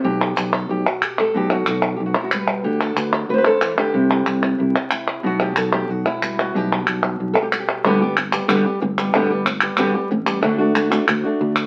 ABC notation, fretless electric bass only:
X:1
M:4/4
L:1/8
Q:1/4=184
K:G
V:1 name="Fretless electric bass" clef=bass
B,,,2 B,,,2 B,,, z3 | B,,,2 B,,,2 B,,, z3 | D,,2 D,,2 D,, z3 | C,,2 C,,2 C,, z3 |
B,,,2 B,,,2 B,,, z3 | B,,,2 B,,,2 B,,, z3 | G,,,4 G,,, z G,,,2 | G,,,4 G,,, z A,,,2 |
D,,4 D,, z D,,2 |]